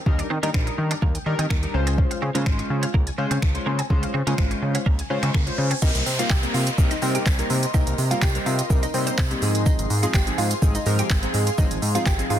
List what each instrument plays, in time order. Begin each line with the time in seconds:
0.06 analog synth bass D#2, analog polysynth G3 D4 D#4 A#4, synth arpeggio sound D#4, kick
0.19 synth arpeggio sound D5, muted clean electric guitar stroke, closed hi-hat
0.30 analog synth bass D#3, clean electric guitar C4, synth arpeggio sound A#4
0.43 analog synth bass D#3, analog polysynth G3 D4 D#4 A#4, clean electric guitar A#3, synth arpeggio sound G5, closed hi-hat
0.54 analog synth bass A#1, analog polysynth G3 D4 D#4 A#4, clean electric guitar C4, finger snap, kick
0.67 synth arpeggio sound D#6, muted clean electric guitar stroke, closed hi-hat
0.78 analog synth bass D#3, synth arpeggio sound D#4
0.91 clean electric guitar D4, synth arpeggio sound D5, closed hi-hat
1.02 analog synth bass D#2, clean electric guitar A#3, kick
1.15 synth arpeggio sound G5, closed hi-hat
1.26 analog synth bass D#3, analog polysynth G3 D4 D#4 A#4, synth arpeggio sound D5, muted clean electric guitar stroke
1.39 analog synth bass D#3, clean electric guitar C4, synth arpeggio sound D#6, closed hi-hat
1.50 analog synth bass D#2, clean electric guitar A#3, finger snap, kick
1.63 analog polysynth G3 D4 D#4 A#4, closed hi-hat
1.74 analog synth bass C#2, analog polysynth G#3 C#4 F4 C5, synth arpeggio sound C5, muted clean electric guitar stroke
1.87 clean electric guitar C4, synth arpeggio sound G#5, closed hi-hat
1.98 synth arpeggio sound C#4, kick
2.11 synth arpeggio sound F5, muted clean electric guitar stroke, closed hi-hat
2.22 analog synth bass C#3, clean electric guitar C4, synth arpeggio sound C5
2.35 analog synth bass C#3, analog polysynth G#3 C#4 F4 C5, clean electric guitar A#3, synth arpeggio sound G#5, closed hi-hat
2.46 analog synth bass G#1, analog polysynth G#3 C#4 F4 C5, clean electric guitar C4, finger snap, kick
2.59 synth arpeggio sound C#6, muted clean electric guitar stroke, closed hi-hat
2.70 analog synth bass C#3, synth arpeggio sound C#4
2.83 clean electric guitar C#4, synth arpeggio sound F5, closed hi-hat
2.94 analog synth bass C#2, clean electric guitar A#3, kick
3.07 synth arpeggio sound G#5, closed hi-hat
3.18 analog synth bass C#3, analog polysynth G#3 C#4 F4 C5, synth arpeggio sound F5, muted clean electric guitar stroke
3.31 analog synth bass C#3, clean electric guitar C4, synth arpeggio sound C#6, closed hi-hat
3.42 analog synth bass C#2, finger snap, muted clean electric guitar stroke, kick
3.55 analog polysynth G#3 C#4 F4 C5, closed hi-hat
3.66 analog synth bass C#3, clean electric guitar A#3, synth arpeggio sound C5
3.79 clean electric guitar C4, synth arpeggio sound G#5, closed hi-hat
3.90 analog synth bass C#2, analog polysynth G#3 C#4 F4 C5, synth arpeggio sound C#4, kick, riser
4.03 synth arpeggio sound F5, muted clean electric guitar stroke, closed hi-hat
4.14 analog synth bass C#3, clean electric guitar C4, synth arpeggio sound C5
4.27 analog synth bass C#3, analog polysynth G#3 C#4 F4 C5, clean electric guitar A#3, synth arpeggio sound G#5, closed hi-hat
4.38 analog synth bass G#1, analog polysynth G#3 C#4 F4 C5, clean electric guitar C4, finger snap, kick
4.51 synth arpeggio sound C#6, muted clean electric guitar stroke, closed hi-hat
4.62 analog synth bass C#3, synth arpeggio sound C#4
4.75 clean electric guitar C#4, synth arpeggio sound F5, closed hi-hat
4.86 analog synth bass C#2, clean electric guitar A#3, kick
4.99 synth arpeggio sound G#5, closed hi-hat
5.10 analog synth bass C#3, analog polysynth G#3 C#4 F4 C5, synth arpeggio sound F5, muted clean electric guitar stroke
5.23 analog synth bass C#3, clean electric guitar C4, synth arpeggio sound C#6, finger snap, closed hi-hat
5.34 analog synth bass C#2, clean electric guitar A#3, finger snap, kick
5.47 analog polysynth G#3 C#4 F4 C5, closed hi-hat
5.58 analog synth bass C#3, synth arpeggio sound C5, muted clean electric guitar stroke
5.71 clean electric guitar C4, synth arpeggio sound G#5, closed hi-hat
5.82 analog synth bass C2, analog polysynth G3 A#3 C4 D#4 A#4, synth pluck D#4 D#5, ambient pad A#4 D#5 C6, kick, crash, tambourine, downlifter, shaker
5.95 analog synth bass C2, closed hi-hat, shaker
6.06 analog synth bass C3, open hi-hat, tambourine, shaker
6.19 analog polysynth G3 A#3 C4 D#4 A#4, synth pluck F4 F5, closed hi-hat, shaker
6.30 analog synth bass C2, synth pluck G4 G5, kick, clap, tambourine, shaker
6.43 analog polysynth G3 A#3 C4 D#4 A#4, closed hi-hat, shaker
6.54 analog synth bass C3, synth pluck F4 F5, open hi-hat, tambourine, shaker
6.67 closed hi-hat, shaker
6.78 analog synth bass C2, analog polysynth G3 A#3 C4 D#4 A#4, kick, tambourine, shaker
6.91 synth pluck D#4 D#5, closed hi-hat, tambourine, shaker
7.02 analog synth bass C3, analog polysynth G3 A#3 C4 D#4 A#4, open hi-hat, tambourine, shaker
7.15 synth pluck G4 G5, closed hi-hat, shaker
7.26 analog synth bass C2, kick, clap, tambourine, shaker
7.39 analog polysynth G3 A#3 C4 D#4 A#4, closed hi-hat, shaker
7.50 analog synth bass C3, open hi-hat, tambourine, shaker
7.63 closed hi-hat, shaker
7.74 analog synth bass C2, analog polysynth G3 A#3 C4 D#4 A#4, synth pluck D#4 D#5, kick, tambourine, shaker
7.87 analog synth bass C2, closed hi-hat, shaker
7.98 analog synth bass C3, open hi-hat, tambourine, shaker
8.11 analog polysynth G3 A#3 C4 D#4 A#4, synth pluck F4 F5, closed hi-hat, shaker
8.22 analog synth bass C2, synth pluck G4 G5, kick, clap, tambourine, shaker
8.35 analog polysynth G3 A#3 C4 D#4 A#4, closed hi-hat, shaker
8.46 analog synth bass C3, synth pluck F4 F5, open hi-hat, tambourine, shaker
8.59 closed hi-hat, tambourine, shaker
8.70 analog synth bass C2, analog polysynth G3 A#3 C4 D#4 A#4, kick, tambourine, shaker
8.83 synth pluck D#4 D#5, closed hi-hat, tambourine, shaker
8.94 analog synth bass C3, analog polysynth G3 A#3 C4 D#4 C5, open hi-hat, tambourine, shaker
9.07 synth pluck C4 C5, closed hi-hat, shaker
9.18 analog synth bass C2, synth pluck C4 C5, kick, clap, tambourine, shaker
9.31 analog polysynth G3 A#3 C4 D#4 G4, closed hi-hat, shaker
9.42 analog synth bass G#2, analog polysynth F3 G#3 C4 D#4 G#4, ambient pad G#4 F5, open hi-hat, tambourine, shaker
9.55 closed hi-hat, tambourine, shaker
9.66 synth pluck D#4 D#5, kick, tambourine, shaker
9.79 analog synth bass G#1, closed hi-hat, shaker
9.90 analog synth bass G#2, open hi-hat, tambourine, shaker
10.03 analog polysynth F3 G#3 C4 D#4 G#4, synth pluck F4 F5, closed hi-hat, shaker
10.14 analog synth bass G#1, synth pluck G4 G5, kick, clap, tambourine, shaker
10.27 analog polysynth F3 G#3 C4 D#4 G#4, closed hi-hat, shaker
10.38 analog synth bass G#2, synth pluck F4 F5, open hi-hat, tambourine, shaker
10.51 closed hi-hat, tambourine, shaker
10.62 analog synth bass G#1, analog polysynth F3 G#3 C4 D#4 G#4, kick, tambourine, shaker
10.75 synth pluck D#4 D#5, closed hi-hat, tambourine, shaker
10.86 analog synth bass G#2, analog polysynth F3 G#3 C4 D#4 A#4, open hi-hat, tambourine, shaker
10.99 synth pluck G4 G5, closed hi-hat, shaker
11.10 analog synth bass G#1, kick, clap, tambourine, shaker
11.23 analog polysynth F3 G#3 C4 D#4 G#4, closed hi-hat, shaker
11.34 analog synth bass G#2, open hi-hat, tambourine, shaker
11.47 closed hi-hat, tambourine, shaker
11.58 analog synth bass G#1, analog polysynth F3 G#3 C4 D#4 G#4, synth pluck D#4 D#5, kick, tambourine, shaker
11.71 analog synth bass G#1, closed hi-hat, shaker
11.82 analog synth bass G#2, open hi-hat, tambourine, shaker
11.95 analog polysynth F3 G#3 C4 D#4 G#4, synth pluck F4 F5, closed hi-hat, tambourine, shaker
12.06 analog synth bass G#1, synth pluck G4 G5, kick, clap, tambourine, shaker
12.19 analog polysynth F3 G#3 C4 D#4 G#4, closed hi-hat, shaker
12.30 analog synth bass G#2, synth pluck F4 F5, open hi-hat, tambourine, shaker